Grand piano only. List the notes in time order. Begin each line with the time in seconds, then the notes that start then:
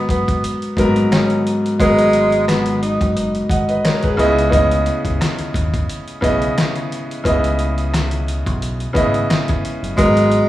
Already playing: G#2 F#3 B3 A#4
0.77 G#2 F#3 B3 A#4
1.79 G#2 F#3 B3 A#4
3.50 D#5 F#5
3.69 B4 D#5
3.85 A#4 C#5
4.03 G#4 B4
4.17 C#3 B3 E4 D#5
4.50 C#3 B3 E4 D#5
6.21 C#3 B3 E4 D#5
7.24 C#3 B3 E4 D#5
8.93 C#3 B3 E4 D#5
9.96 G#2 F#3 B3 A#4